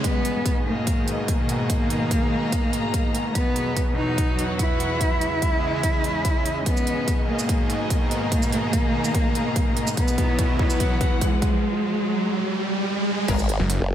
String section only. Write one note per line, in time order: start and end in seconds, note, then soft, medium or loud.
0.00 0.88 C#4 medium
0.00 4.02 G#4 medium
0.00 4.02 D#5 medium
1.27 4.02 A#5 medium
3.35 5.54 F#4 medium
3.99 5.67 B4 loud
4.10 5.67 F#5 medium
5.01 6.66 E3 medium
5.25 7.78 C#4 medium
5.58 10.64 D#5 medium
5.75 10.64 G#4 medium
7.47 10.64 A#5 medium
9.97 11.63 E4 loud
10.58 11.63 B4 medium
10.72 11.63 F#5 medium